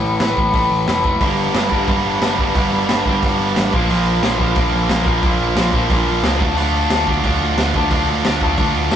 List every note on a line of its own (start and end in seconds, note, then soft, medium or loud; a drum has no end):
0.00 0.17 A1 medium
0.00 0.19 A2 medium
0.00 0.20 E3 loud
0.00 0.20 A3 medium
0.20 0.34 A1 medium
0.20 0.36 A2 medium
0.20 0.36 E3 medium
0.20 0.35 A3 medium
0.20 snare loud
0.20 open hi-hat medium
0.37 0.51 A1 medium
0.37 0.52 A2 medium
0.37 0.53 E3 medium
0.37 0.53 A3 medium
0.37 kick medium
0.53 0.68 A1 medium
0.53 0.86 A2 medium
0.53 0.87 E3 loud
0.53 0.87 A3 loud
0.53 kick loud
0.53 open hi-hat medium
0.71 0.85 A1 medium
0.87 1.15 F1 medium
0.87 1.04 A2 medium
0.87 1.04 E3 medium
0.87 1.03 A3 loud
0.87 snare medium
0.87 open hi-hat soft
1.04 1.21 A2 medium
1.04 1.21 E3 medium
1.04 1.20 A3 medium
1.04 kick medium
1.21 1.49 G1 medium
1.21 1.54 G2 medium
1.21 1.54 D3 medium
1.21 1.55 G3 loud
1.21 1.56 A#3 loud
1.21 1.57 D4 loud
1.21 kick loud
1.21 open hi-hat medium
1.54 1.69 G1 loud
1.54 1.73 G2 medium
1.54 1.73 D3 medium
1.54 1.72 G3 medium
1.54 1.72 A#3 medium
1.54 1.71 D4 medium
1.54 snare loud
1.54 open hi-hat medium
1.71 1.85 G1 medium
1.71 1.88 G2 medium
1.71 1.89 D3 medium
1.71 1.89 G3 medium
1.71 1.90 A#3 medium
1.71 1.91 D4 medium
1.71 kick medium
1.88 2.02 G1 medium
1.88 2.21 G2 medium
1.88 2.22 D3 medium
1.88 2.23 G3 loud
1.88 2.24 A#3 loud
1.88 2.25 D4 loud
1.88 kick loud
1.88 open hi-hat soft
2.05 2.19 G1 medium
2.22 2.36 G1 medium
2.22 2.41 G2 medium
2.22 2.41 D3 medium
2.22 2.40 G3 medium
2.22 2.40 A#3 loud
2.22 2.39 D4 medium
2.22 snare loud
2.22 open hi-hat medium
2.38 2.52 G1 medium
2.38 2.54 G2 medium
2.38 2.55 D3 medium
2.38 2.56 G3 medium
2.38 2.57 A#3 medium
2.38 2.58 D4 medium
2.38 kick medium
2.55 2.69 G1 loud
2.55 2.89 G2 medium
2.55 2.89 D3 medium
2.55 2.90 G3 loud
2.55 2.91 A#3 medium
2.55 2.92 D4 medium
2.55 kick loud
2.55 open hi-hat medium
2.73 2.86 G1 medium
2.89 3.03 G1 medium
2.89 3.07 G2 medium
2.89 3.07 D3 medium
2.89 3.07 G3 medium
2.89 3.07 A#3 medium
2.89 3.07 D4 medium
2.89 snare loud
2.89 open hi-hat medium
3.06 3.19 G1 medium
3.06 3.22 G2 medium
3.06 3.23 D3 medium
3.06 3.23 G3 medium
3.06 3.25 A#3 medium
3.06 3.25 D4 medium
3.06 kick medium
3.23 3.36 G1 medium
3.23 3.55 G2 medium
3.23 3.56 D3 loud
3.23 3.56 G3 loud
3.23 3.58 A#3 medium
3.23 3.58 D4 loud
3.23 kick loud
3.23 open hi-hat medium
3.39 3.53 G1 medium
3.56 3.70 A1 medium
3.56 3.72 G2 medium
3.56 3.72 D3 medium
3.56 3.73 G3 medium
3.56 3.75 A#3 medium
3.56 3.75 D4 medium
3.56 snare loud
3.56 open hi-hat medium
3.73 3.86 A#1 medium
3.73 3.90 A#2 loud
3.73 3.89 D3 medium
3.73 3.90 F3 loud
3.73 3.89 A#3 medium
3.73 3.88 D4 loud
3.73 kick loud
3.89 4.17 A#1 loud
3.89 4.24 A#2 medium
3.89 4.23 D3 medium
3.89 4.23 F3 medium
3.89 4.23 A#3 medium
3.89 4.23 D4 loud
3.89 open hi-hat medium
4.23 4.37 A#1 medium
4.23 4.38 A#2 medium
4.23 4.39 D3 medium
4.23 4.40 F3 medium
4.23 4.40 A#3 medium
4.23 4.41 D4 medium
4.23 snare loud
4.23 open hi-hat medium
4.39 4.53 A#1 medium
4.39 4.56 A#2 medium
4.39 4.56 D3 medium
4.39 4.56 F3 medium
4.39 4.55 A#3 medium
4.39 4.55 D4 medium
4.39 kick medium
4.56 4.70 A#1 medium
4.56 4.91 A#2 medium
4.56 4.90 D3 medium
4.56 4.91 F3 medium
4.56 4.89 A#3 loud
4.56 4.89 D4 loud
4.56 kick loud
4.56 open hi-hat soft
4.73 4.87 A#1 medium
4.89 5.04 A#1 medium
4.89 5.05 A#2 medium
4.89 5.05 D3 medium
4.89 5.07 F3 medium
4.89 5.06 A#3 medium
4.89 5.08 D4 medium
4.89 snare loud
4.89 open hi-hat medium
5.06 5.20 A#1 medium
5.06 5.24 A#2 medium
5.06 5.24 D3 medium
5.06 5.24 F3 medium
5.06 5.22 A#3 medium
5.06 5.22 D4 medium
5.06 kick medium
5.23 5.37 A#1 medium
5.23 5.57 A#2 medium
5.23 5.56 D3 medium
5.23 5.57 F3 medium
5.23 5.56 A#3 loud
5.23 5.56 D4 loud
5.23 kick loud
5.23 open hi-hat medium
5.40 5.54 A#1 medium
5.56 5.70 A#1 medium
5.56 5.72 A#2 medium
5.56 5.72 D3 medium
5.56 5.74 F3 medium
5.56 5.74 A#3 medium
5.56 5.75 D4 medium
5.56 snare loud
5.56 open hi-hat medium
5.73 5.87 A#1 medium
5.73 5.90 A#2 medium
5.73 5.90 D3 medium
5.73 5.90 F3 medium
5.73 5.89 A#3 medium
5.73 5.89 D4 medium
5.73 kick medium
5.90 6.04 A#1 medium
5.90 6.24 A#2 medium
5.90 6.23 D3 medium
5.90 6.24 F3 medium
5.90 6.22 A#3 medium
5.90 6.23 D4 loud
5.90 kick loud
5.90 open hi-hat medium
6.07 6.21 A#1 medium
6.23 6.37 C#2 medium
6.23 6.40 A#2 medium
6.23 6.39 D3 medium
6.23 6.40 F3 medium
6.23 6.40 A#3 medium
6.23 6.41 D4 medium
6.23 snare loud
6.23 open hi-hat soft
6.40 6.54 D2 medium
6.40 6.58 D3 medium
6.40 6.57 A3 medium
6.40 6.56 D4 medium
6.40 6.56 F4 loud
6.40 kick loud
6.56 6.84 D2 medium
6.56 6.91 D3 medium
6.56 6.91 A3 medium
6.56 6.90 D4 medium
6.56 6.89 F4 loud
6.56 open hi-hat medium
6.90 7.04 D2 medium
6.90 7.07 D3 medium
6.90 7.07 A3 medium
6.90 7.08 D4 medium
6.90 7.08 F4 medium
6.90 snare loud
6.90 open hi-hat medium
7.07 7.21 D2 medium
7.07 7.25 D3 medium
7.07 7.25 A3 medium
7.07 7.24 D4 medium
7.07 7.23 F4 medium
7.07 kick medium
7.24 7.38 D2 medium
7.24 7.59 D3 medium
7.24 7.59 A3 medium
7.24 7.58 D4 medium
7.24 7.57 F4 loud
7.24 kick medium
7.24 open hi-hat medium
7.41 7.55 D2 medium
7.57 7.71 D2 medium
7.57 7.73 D3 medium
7.57 7.75 A3 medium
7.57 7.74 D4 medium
7.57 7.75 F4 medium
7.57 snare loud
7.57 open hi-hat soft
7.74 7.88 D2 medium
7.74 7.92 D3 medium
7.74 7.92 A3 medium
7.74 7.91 D4 medium
7.74 7.91 F4 medium
7.74 kick medium
7.91 8.05 D2 medium
7.91 8.27 D3 medium
7.91 8.27 A3 medium
7.91 8.26 D4 medium
7.91 8.25 F4 loud
7.91 kick loud
7.91 open hi-hat medium
8.08 8.22 D2 medium
8.24 8.39 D2 medium
8.24 8.41 D3 medium
8.24 8.42 A3 medium
8.24 8.42 D4 medium
8.24 8.43 F4 loud
8.24 snare loud
8.24 open hi-hat medium
8.41 8.55 D2 medium
8.41 8.60 D3 medium
8.41 8.60 A3 medium
8.41 8.59 D4 medium
8.41 8.58 F4 medium
8.41 kick medium
8.58 8.72 D2 medium
8.58 8.93 D3 medium
8.58 8.93 A3 medium
8.58 8.92 D4 medium
8.58 8.91 F4 loud
8.58 kick loud
8.58 open hi-hat soft
8.74 8.88 D2 medium
8.91 8.96 D2 medium
8.91 8.96 A3 medium
8.91 8.96 D4 medium
8.91 8.96 F4 medium
8.91 snare medium
8.91 open hi-hat medium